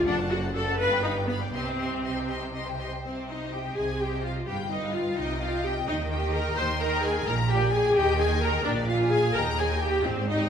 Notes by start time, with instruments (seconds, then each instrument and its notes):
0.05 double bass section F#1, cello section F#2, viola section D4, violin section A4 D5 F#5
0.17 violin section C5 F#5 A5
0.29 viola section F#4, violin section A4 D5 F#5
0.42 violin section C5 F#5 A5
0.54 viola section A4, violin section A4 D5 F#5
0.67 violin section C5 F#5 A5
0.78 double bass section G1, cello section G2, viola section B4, violin section B4 F5 B5
0.91 violin section D5 G5
1.03 viola section D#4, violin section B4 F5 B5
1.16 violin section D5 G5
1.27 viola section B3, violin section B4 F5 B5
1.41 violin section D5 G5
1.52 double bass section C2, cello section C3, viola section C4, violin section G4 D#5 C6
1.65 violin section C5 G5
1.77 violin section G4 D#5 C6
1.89 violin section C5 G5
2.02 violin section G4 D#5 C6
2.15 violin section C5 G5
2.28 violin section G4 D#5 C6
2.41 violin section C5 G5
2.53 violin section G4 D#5 C6
2.65 violin section C5 G5
2.77 violin section G4 D#5 C6
2.90 violin section C5 G5
3.04 double bass section C2, cello section C3, viola section C4, violin section C5
3.27 viola section D#4, violin section C5 D#5
3.52 viola section G4, violin section G5
3.76 double bass section C2, cello section C3, viola section G#4, violin section G#5
3.99 viola section G4, violin section C5 D#5 G5
4.23 viola section F4, violin section F5
4.46 double bass section G1, cello section G2, viola section G4, violin section B4 F5 G5
4.68 viola section D#4, violin section B4 D#5 F5
4.93 viola section F4, violin section F5
5.17 double bass section C2, cello section C3, viola section D#4, violin section D#5 G5
5.40 viola section F4, violin section D#5 F5 G5
5.63 viola section G4, violin section G5
5.87 double bass section D#2, cello section D#3, viola section D#4, violin section D#5 G5
6.09 viola section G4, violin section D#5 G5
6.33 viola section A#4, violin section A#5
6.56 double bass section D#2, cello section D#3, viola section C5, violin section C6
6.80 viola section A#4, violin section D#5 G5 A#5
7.02 viola section G#4, violin section G#5
7.25 double bass section A#1, cello section A#2, viola section A#4, violin section A#5
7.49 viola section G4, violin section D5 G5 G#5
7.72 viola section G#4, violin section G#5
7.95 double bass section D#2, cello section D#3, viola section G4, violin section D#5 G5
8.19 viola section G#4, violin section D#5 G5 G#5
8.41 viola section A#4, violin section A#5
8.64 double bass section A#1, cello section A#2, viola section D4, violin section D5
8.87 viola section F4, violin section F5 G#5
9.10 viola section G#4, violin section G#5
9.33 double bass section D#2, viola section A#4, violin section D#5 G5 A#5
9.37 cello section D#2
9.58 viola section G#4, violin section D#5 G5 G#5
9.82 viola section G4, violin section G5
10.05 double bass section G#1, cello section G#2, viola section C4, violin section C5
10.29 viola section D#4, violin section D#5 G5